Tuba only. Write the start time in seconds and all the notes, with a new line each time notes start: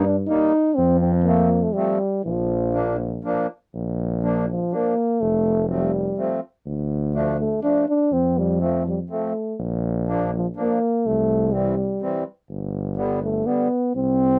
Already playing: G2
0.79 F2
2.26 A#1
3.74 A#1
5.21 F1
6.66 D2
8.12 F2
9.59 A#1
11.06 C2
12.50 G1
13.95 C2